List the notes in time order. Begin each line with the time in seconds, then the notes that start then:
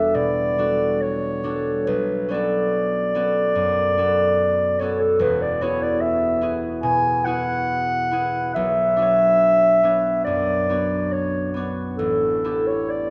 Already playing: E1 E2 G3 D4 E4 F#4 G4 A4 E5
0.14 B2 D5
0.58 G3 D4 F#4 A4
1.01 C#5
1.43 G3 D4 F#4 A4
1.87 B1 B4
2.29 B3 C#4 F#4 D5
2.34 A4
3.15 B3 C#4 F#4 A4
3.55 F#2
3.98 B3 C#4 F#4 A4
4.79 B3 C#4 F#4 A4 C#5
5.00 A4
5.19 E1 E2 B4
5.42 D5
5.61 B3 E4 F#4 G#4 C#5
5.82 D5
6.01 E5
6.41 B3 E4 F#4 G#4
6.83 B2 G#5
7.25 B3 E4 F#4 G#4 F#5
8.11 B3 E4 F#4 G#4
8.54 B1 E5
8.97 B3 D4 F#4
9.02 C#5
9.83 B3 D4 F#4 C#5
10.24 F#2 D5
10.69 B3 D4 F#4 C#5
11.12 C#5
11.54 B3 D4 C#5
11.59 F#4
11.98 A1 A4
12.44 B3 E4 G4 A4
12.67 C#5
12.90 D5